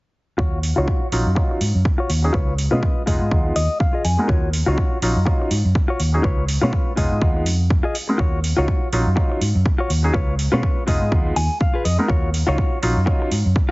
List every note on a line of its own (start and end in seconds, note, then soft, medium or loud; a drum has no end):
0.38 0.71 D#2 medium
0.38 0.58 F4 loud
0.38 0.58 F#4 loud
0.38 0.59 C#5 loud
0.38 kick loud
0.63 open hi-hat loud
0.76 0.85 C#2 medium
0.76 0.87 F#3 medium
0.76 0.87 C#4 medium
0.76 0.87 D#4 medium
0.76 1.06 F4 medium
0.76 0.87 F4 medium
0.76 1.07 F#4 medium
0.76 1.07 C#5 medium
0.88 kick loud
1.12 1.22 A#1 medium
1.12 1.25 F#3 medium
1.12 1.25 C#4 medium
1.12 1.25 D#4 medium
1.12 1.25 F4 medium
1.12 open hi-hat loud
1.26 1.34 F#2 medium
1.35 1.56 F#3 medium
1.35 1.56 C#4 medium
1.35 1.56 D#4 medium
1.35 1.56 F4 medium
1.35 muted clean electric guitar stroke medium
1.35 kick loud
1.49 muted clean electric guitar stroke soft
1.61 1.71 G#2 medium
1.61 open hi-hat loud
1.75 1.83 F#2 medium
1.85 kick loud
1.98 2.09 F4 medium
1.98 2.10 F#4 medium
1.98 2.10 C#5 medium
2.10 2.29 D#2 medium
2.10 open hi-hat loud
2.23 2.33 F#3 medium
2.23 2.33 C#4 medium
2.23 2.33 D#4 medium
2.23 2.33 G#4 medium
2.23 muted clean electric guitar stroke soft
2.33 2.53 F4 loud
2.33 2.53 B4 loud
2.33 2.53 C#5 loud
2.33 kick loud
2.58 open hi-hat loud
2.71 2.80 B2 medium
2.71 2.82 G#3 medium
2.71 2.82 B3 medium
2.71 2.82 C#4 medium
2.71 3.01 F4 medium
2.71 2.83 F4 medium
2.71 3.02 B4 medium
2.71 3.02 D#5 medium
2.83 kick loud
3.06 3.17 F1 medium
3.06 3.20 G#3 medium
3.06 3.20 B3 medium
3.06 3.20 D#4 medium
3.06 3.37 F4 medium
3.06 3.20 F4 medium
3.06 3.37 G#4 medium
3.06 3.38 D#5 loud
3.06 kick medium
3.06 open hi-hat loud
3.21 3.29 G#2 medium
3.31 3.50 D#2 medium
3.31 3.51 G#3 medium
3.31 3.51 B3 medium
3.31 3.51 D#4 medium
3.31 3.51 F4 medium
3.31 kick loud
3.44 muted clean electric guitar stroke soft
3.56 3.66 D#2 medium
3.56 3.79 D#5 medium
3.56 open hi-hat loud
3.80 4.03 F5 medium
3.80 kick loud
3.93 4.04 F4 medium
3.93 4.05 G#4 medium
3.93 4.05 D#5 medium
4.05 4.15 F2 medium
4.05 4.27 G#5 medium
4.05 open hi-hat loud
4.17 4.28 G#3 medium
4.17 4.28 B3 medium
4.17 4.28 D#4 medium
4.17 4.28 A#4 medium
4.17 muted clean electric guitar stroke soft
4.28 4.62 D#2 medium
4.28 4.48 F4 loud
4.28 4.48 F#4 loud
4.28 4.49 C#5 loud
4.28 kick loud
4.53 open hi-hat loud
4.66 4.75 C#2 medium
4.66 4.77 F#3 medium
4.66 4.77 C#4 medium
4.66 4.77 D#4 medium
4.66 4.97 F4 medium
4.66 4.78 F4 medium
4.66 4.97 F#4 medium
4.66 4.97 C#5 medium
4.78 kick loud
5.02 5.12 A#1 medium
5.02 5.15 F#3 medium
5.02 5.15 C#4 medium
5.02 5.15 D#4 medium
5.02 5.16 F4 medium
5.02 open hi-hat loud
5.16 5.24 F#2 medium
5.26 5.46 F#3 medium
5.26 5.46 C#4 medium
5.26 5.46 D#4 medium
5.26 5.46 F4 medium
5.26 muted clean electric guitar stroke medium
5.26 kick loud
5.40 muted clean electric guitar stroke soft
5.51 5.61 G#2 medium
5.51 open hi-hat loud
5.65 5.73 F#2 medium
5.75 kick loud
5.88 5.99 F4 medium
5.88 6.00 F#4 medium
5.88 6.00 C#5 medium
6.00 6.19 D#2 medium
6.00 open hi-hat loud
6.13 6.23 F#3 medium
6.13 6.23 C#4 medium
6.13 6.23 D#4 medium
6.13 6.23 G#4 medium
6.13 muted clean electric guitar stroke soft
6.23 6.43 F4 loud
6.23 6.43 B4 loud
6.23 6.44 C#5 loud
6.23 kick loud
6.49 open hi-hat loud
6.61 6.70 B2 medium
6.61 6.72 G#3 medium
6.61 6.72 B3 medium
6.61 6.73 C#4 medium
6.61 6.92 F4 medium
6.61 6.73 F4 medium
6.61 6.92 B4 medium
6.61 6.93 C#5 medium
6.73 kick loud
6.96 7.08 F1 medium
6.96 7.10 G#3 medium
6.96 7.10 B3 medium
6.96 7.10 D#4 medium
6.96 7.27 F4 medium
6.96 7.11 F4 medium
6.96 7.27 G#4 medium
6.96 7.28 D#5 loud
6.96 kick medium
6.96 open hi-hat loud
7.11 7.19 G#2 medium
7.21 7.46 D#2 medium
7.21 7.41 G#3 medium
7.21 7.41 B3 medium
7.21 7.41 D#4 medium
7.21 7.41 F4 medium
7.21 kick loud
7.35 muted clean electric guitar stroke soft
7.46 7.79 F2 medium
7.46 open hi-hat loud
7.70 kick loud
7.83 7.94 F4 medium
7.83 7.95 G#4 medium
7.83 7.95 D#5 medium
7.95 open hi-hat loud
8.08 8.18 G#3 medium
8.08 8.18 B3 medium
8.08 8.18 D#4 medium
8.08 8.19 A#4 medium
8.08 muted clean electric guitar stroke soft
8.18 8.52 D#2 medium
8.18 8.38 F4 loud
8.18 8.38 F#4 loud
8.18 8.39 C#5 loud
8.18 kick loud
8.44 open hi-hat loud
8.57 8.65 C#2 medium
8.57 8.67 F#3 medium
8.57 8.68 C#4 medium
8.57 8.68 D#4 medium
8.57 8.87 F4 medium
8.57 8.68 F4 medium
8.57 8.87 F#4 medium
8.57 8.88 C#5 medium
8.68 kick loud
8.92 9.03 A#1 medium
8.92 9.05 F#3 medium
8.92 9.06 C#4 medium
8.92 9.06 D#4 medium
8.92 9.06 F4 medium
8.92 open hi-hat medium
9.06 9.14 F#2 medium
9.16 9.36 F#3 medium
9.16 9.36 C#4 medium
9.16 9.36 D#4 medium
9.16 9.36 F4 medium
9.16 muted clean electric guitar stroke medium
9.16 kick loud
9.30 muted clean electric guitar stroke soft
9.41 9.52 G#2 medium
9.41 open hi-hat loud
9.55 9.63 F#2 medium
9.66 kick loud
9.78 9.90 F4 medium
9.78 9.90 F#4 medium
9.78 9.91 C#5 medium
9.90 10.09 D#2 medium
9.90 open hi-hat loud
10.03 10.13 F#3 medium
10.03 10.13 C#4 medium
10.03 10.13 D#4 medium
10.03 10.13 G#4 medium
10.03 muted clean electric guitar stroke soft
10.14 10.33 F4 loud
10.14 10.34 B4 medium
10.14 10.34 C#5 loud
10.14 kick loud
10.39 open hi-hat loud
10.52 10.61 B2 medium
10.52 10.62 G#3 medium
10.52 10.63 B3 medium
10.52 10.63 C#4 medium
10.52 10.82 F4 medium
10.52 10.63 F4 medium
10.52 10.82 B4 medium
10.52 10.83 C#5 medium
10.63 kick loud
10.87 10.98 F1 medium
10.87 11.00 G#3 medium
10.87 11.00 B3 medium
10.87 11.01 D#4 medium
10.87 11.17 F4 medium
10.87 11.01 F4 medium
10.87 11.18 G#4 medium
10.87 11.18 D#5 loud
10.87 kick medium
10.87 open hi-hat medium
11.01 11.09 G#2 medium
11.12 11.31 D#2 medium
11.12 11.31 G#3 medium
11.12 11.31 B3 medium
11.12 11.31 D#4 medium
11.12 11.31 F4 medium
11.12 kick loud
11.25 muted clean electric guitar stroke soft
11.36 11.47 D#2 medium
11.36 11.59 G#5 medium
11.36 open hi-hat loud
11.61 11.83 F5 medium
11.61 kick loud
11.74 11.85 F4 medium
11.74 11.85 G#4 medium
11.74 11.86 B4 medium
11.85 11.95 F2 medium
11.85 11.99 D#5 medium
11.85 open hi-hat loud
11.98 12.08 G#3 medium
11.98 12.08 B3 medium
11.98 12.08 D#4 medium
11.98 12.08 A#4 medium
11.98 muted clean electric guitar stroke soft
12.08 12.42 D#2 medium
12.08 12.28 F4 loud
12.08 12.29 F#4 loud
12.08 12.29 C#5 loud
12.08 kick loud
12.34 open hi-hat loud
12.47 12.56 C#2 medium
12.47 12.57 F#3 medium
12.47 12.58 C#4 medium
12.47 12.58 D#4 medium
12.47 12.77 F4 medium
12.47 12.58 F4 medium
12.47 12.77 F#4 medium
12.47 12.78 C#5 medium
12.58 kick loud
12.82 12.93 A#1 medium
12.82 12.95 F#3 medium
12.82 12.96 C#4 medium
12.82 12.96 D#4 medium
12.82 12.96 F4 medium
12.82 open hi-hat medium
12.97 13.04 F#2 medium
13.06 13.26 F#3 medium
13.06 13.26 C#4 medium
13.06 13.26 D#4 medium
13.06 13.26 F4 medium
13.06 muted clean electric guitar stroke medium
13.06 kick loud
13.20 muted clean electric guitar stroke soft
13.32 13.42 G#2 loud
13.32 open hi-hat medium
13.46 13.53 F#2 medium
13.56 kick loud